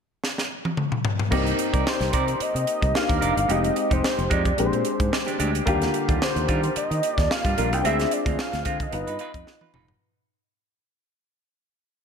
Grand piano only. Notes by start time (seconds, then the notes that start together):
1.30 A#3 C4 D#4 G4
2.94 A#3 D4 D#4 G4
3.48 G#3 C4 D#4 G4
4.57 G#3 C4 D4 G4
5.65 D3 A#3 F4 G4
7.57 A#3 D4 F4 A#4
7.83 C4 D4 F4 G#4
8.91 B3 D#4 F4 B4